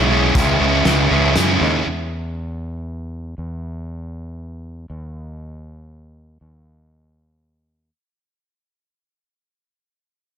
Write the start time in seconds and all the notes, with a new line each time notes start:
Already playing: B1 G#3 C#4 E4
0.11 C#3 G#3 C#4 E4
0.35 C#2 C#3 G#3 C#4 E4, kick, closed hi-hat
0.60 C#2 C#3 G#3 C#4 E4
0.85 C#2 C#3 G#3 C#4 E4, snare, closed hi-hat
1.10 C#2 C#3 G#3 C#4 E4
1.36 F#2 C#3 G#3 C#4 E4, snare, closed hi-hat
1.61 D#2 C#3 G#3 C#4 E4
1.86 E2
3.38 E2
4.90 D#2
6.41 D#2